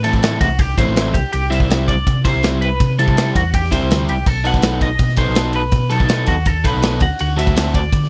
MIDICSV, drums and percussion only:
0, 0, Header, 1, 2, 480
1, 0, Start_track
1, 0, Tempo, 366524
1, 1740, Time_signature, 4, 2, 24, 8
1, 10599, End_track
2, 0, Start_track
2, 0, Title_t, "Drums"
2, 49, Note_on_c, 9, 51, 79
2, 174, Note_on_c, 9, 36, 85
2, 180, Note_off_c, 9, 51, 0
2, 294, Note_on_c, 9, 51, 110
2, 305, Note_off_c, 9, 36, 0
2, 310, Note_on_c, 9, 38, 121
2, 425, Note_off_c, 9, 51, 0
2, 441, Note_off_c, 9, 38, 0
2, 533, Note_on_c, 9, 36, 92
2, 533, Note_on_c, 9, 51, 87
2, 664, Note_off_c, 9, 36, 0
2, 664, Note_off_c, 9, 51, 0
2, 767, Note_on_c, 9, 51, 116
2, 771, Note_on_c, 9, 36, 108
2, 898, Note_off_c, 9, 51, 0
2, 902, Note_off_c, 9, 36, 0
2, 1016, Note_on_c, 9, 36, 87
2, 1025, Note_on_c, 9, 51, 89
2, 1147, Note_off_c, 9, 36, 0
2, 1156, Note_off_c, 9, 51, 0
2, 1259, Note_on_c, 9, 51, 98
2, 1274, Note_on_c, 9, 38, 114
2, 1389, Note_off_c, 9, 51, 0
2, 1405, Note_off_c, 9, 38, 0
2, 1496, Note_on_c, 9, 36, 100
2, 1503, Note_on_c, 9, 51, 82
2, 1627, Note_off_c, 9, 36, 0
2, 1634, Note_off_c, 9, 51, 0
2, 1736, Note_on_c, 9, 51, 106
2, 1867, Note_off_c, 9, 51, 0
2, 1990, Note_on_c, 9, 51, 78
2, 2097, Note_on_c, 9, 36, 85
2, 2121, Note_off_c, 9, 51, 0
2, 2228, Note_off_c, 9, 36, 0
2, 2230, Note_on_c, 9, 51, 100
2, 2246, Note_on_c, 9, 38, 108
2, 2361, Note_off_c, 9, 51, 0
2, 2377, Note_off_c, 9, 38, 0
2, 2464, Note_on_c, 9, 36, 91
2, 2472, Note_on_c, 9, 51, 77
2, 2595, Note_off_c, 9, 36, 0
2, 2603, Note_off_c, 9, 51, 0
2, 2708, Note_on_c, 9, 36, 113
2, 2713, Note_on_c, 9, 51, 94
2, 2839, Note_off_c, 9, 36, 0
2, 2844, Note_off_c, 9, 51, 0
2, 2944, Note_on_c, 9, 36, 88
2, 2949, Note_on_c, 9, 51, 86
2, 3075, Note_off_c, 9, 36, 0
2, 3080, Note_off_c, 9, 51, 0
2, 3184, Note_on_c, 9, 51, 93
2, 3200, Note_on_c, 9, 38, 107
2, 3315, Note_off_c, 9, 51, 0
2, 3331, Note_off_c, 9, 38, 0
2, 3432, Note_on_c, 9, 51, 75
2, 3563, Note_off_c, 9, 51, 0
2, 3670, Note_on_c, 9, 51, 101
2, 3671, Note_on_c, 9, 36, 110
2, 3801, Note_off_c, 9, 51, 0
2, 3802, Note_off_c, 9, 36, 0
2, 3918, Note_on_c, 9, 51, 75
2, 4030, Note_on_c, 9, 36, 90
2, 4049, Note_off_c, 9, 51, 0
2, 4153, Note_on_c, 9, 51, 104
2, 4161, Note_off_c, 9, 36, 0
2, 4169, Note_on_c, 9, 38, 111
2, 4284, Note_off_c, 9, 51, 0
2, 4300, Note_off_c, 9, 38, 0
2, 4393, Note_on_c, 9, 36, 93
2, 4398, Note_on_c, 9, 51, 86
2, 4524, Note_off_c, 9, 36, 0
2, 4529, Note_off_c, 9, 51, 0
2, 4632, Note_on_c, 9, 51, 100
2, 4633, Note_on_c, 9, 36, 111
2, 4763, Note_off_c, 9, 51, 0
2, 4764, Note_off_c, 9, 36, 0
2, 4777, Note_on_c, 9, 38, 30
2, 4870, Note_on_c, 9, 36, 87
2, 4876, Note_on_c, 9, 51, 87
2, 4908, Note_off_c, 9, 38, 0
2, 5001, Note_off_c, 9, 36, 0
2, 5007, Note_off_c, 9, 51, 0
2, 5114, Note_on_c, 9, 51, 104
2, 5130, Note_on_c, 9, 38, 103
2, 5245, Note_off_c, 9, 51, 0
2, 5261, Note_off_c, 9, 38, 0
2, 5352, Note_on_c, 9, 51, 79
2, 5483, Note_off_c, 9, 51, 0
2, 5585, Note_on_c, 9, 36, 111
2, 5589, Note_on_c, 9, 49, 100
2, 5716, Note_off_c, 9, 36, 0
2, 5720, Note_off_c, 9, 49, 0
2, 5829, Note_on_c, 9, 51, 82
2, 5945, Note_on_c, 9, 36, 88
2, 5960, Note_off_c, 9, 51, 0
2, 6054, Note_on_c, 9, 51, 98
2, 6069, Note_on_c, 9, 38, 126
2, 6076, Note_off_c, 9, 36, 0
2, 6185, Note_off_c, 9, 51, 0
2, 6200, Note_off_c, 9, 38, 0
2, 6301, Note_on_c, 9, 36, 88
2, 6304, Note_on_c, 9, 51, 86
2, 6432, Note_off_c, 9, 36, 0
2, 6435, Note_off_c, 9, 51, 0
2, 6533, Note_on_c, 9, 51, 99
2, 6538, Note_on_c, 9, 36, 111
2, 6664, Note_off_c, 9, 51, 0
2, 6665, Note_on_c, 9, 38, 32
2, 6669, Note_off_c, 9, 36, 0
2, 6763, Note_on_c, 9, 51, 83
2, 6775, Note_on_c, 9, 36, 86
2, 6796, Note_off_c, 9, 38, 0
2, 6894, Note_off_c, 9, 51, 0
2, 6906, Note_off_c, 9, 36, 0
2, 7008, Note_on_c, 9, 51, 95
2, 7024, Note_on_c, 9, 38, 120
2, 7139, Note_off_c, 9, 51, 0
2, 7155, Note_off_c, 9, 38, 0
2, 7240, Note_on_c, 9, 51, 77
2, 7371, Note_off_c, 9, 51, 0
2, 7484, Note_on_c, 9, 51, 98
2, 7493, Note_on_c, 9, 36, 112
2, 7615, Note_off_c, 9, 51, 0
2, 7624, Note_off_c, 9, 36, 0
2, 7732, Note_on_c, 9, 51, 76
2, 7858, Note_on_c, 9, 36, 95
2, 7863, Note_off_c, 9, 51, 0
2, 7969, Note_on_c, 9, 51, 101
2, 7985, Note_on_c, 9, 38, 115
2, 7989, Note_off_c, 9, 36, 0
2, 8100, Note_off_c, 9, 51, 0
2, 8116, Note_off_c, 9, 38, 0
2, 8203, Note_on_c, 9, 51, 84
2, 8218, Note_on_c, 9, 36, 90
2, 8334, Note_off_c, 9, 51, 0
2, 8349, Note_off_c, 9, 36, 0
2, 8452, Note_on_c, 9, 51, 103
2, 8461, Note_on_c, 9, 36, 106
2, 8583, Note_off_c, 9, 51, 0
2, 8592, Note_off_c, 9, 36, 0
2, 8701, Note_on_c, 9, 36, 84
2, 8705, Note_on_c, 9, 51, 84
2, 8832, Note_off_c, 9, 36, 0
2, 8836, Note_off_c, 9, 51, 0
2, 8937, Note_on_c, 9, 51, 114
2, 8953, Note_on_c, 9, 38, 105
2, 9068, Note_off_c, 9, 51, 0
2, 9084, Note_off_c, 9, 38, 0
2, 9170, Note_on_c, 9, 51, 84
2, 9180, Note_on_c, 9, 36, 107
2, 9301, Note_off_c, 9, 51, 0
2, 9311, Note_off_c, 9, 36, 0
2, 9416, Note_on_c, 9, 51, 108
2, 9547, Note_off_c, 9, 51, 0
2, 9673, Note_on_c, 9, 51, 83
2, 9784, Note_on_c, 9, 36, 94
2, 9804, Note_off_c, 9, 51, 0
2, 9905, Note_on_c, 9, 51, 117
2, 9915, Note_off_c, 9, 36, 0
2, 9921, Note_on_c, 9, 38, 118
2, 10036, Note_off_c, 9, 51, 0
2, 10052, Note_off_c, 9, 38, 0
2, 10140, Note_on_c, 9, 36, 91
2, 10144, Note_on_c, 9, 51, 81
2, 10271, Note_off_c, 9, 36, 0
2, 10275, Note_off_c, 9, 51, 0
2, 10378, Note_on_c, 9, 36, 107
2, 10381, Note_on_c, 9, 51, 99
2, 10509, Note_off_c, 9, 36, 0
2, 10512, Note_off_c, 9, 51, 0
2, 10525, Note_on_c, 9, 38, 33
2, 10599, Note_off_c, 9, 38, 0
2, 10599, End_track
0, 0, End_of_file